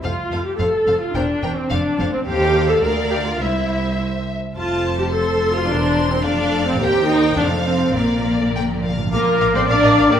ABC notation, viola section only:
X:1
M:2/4
L:1/16
Q:1/4=106
K:F
V:1 name="Viola section"
F3 G A3 F | D3 C D3 C | G3 A B2 G F | E4 z4 |
F3 G A3 F | D3 C D3 C | [K:Bb] G2 E2 D2 C2 | B,6 z2 |
B3 c d3 B |]